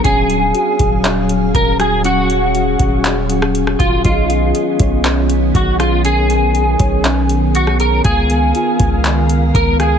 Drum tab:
HH |x-x-x-x-x-x-x-x-|x-x-x-x-x-x-x-x-|x-x-x-x-x-x-x-x-|x-x-x-x-x-x-x-x-|
CP |--------x-------|--------x-------|--------x-------|--------x-------|
SD |--------------r-|-----------r-r--|--------------r-|-------------r--|
BD |o-----o-----o---|------o-------o-|o-----o-----o---|------o---------|

HH |x-x-x-x-x-x-x-x-|
CP |--------x-------|
SD |--------------r-|
BD |o-----o-----o---|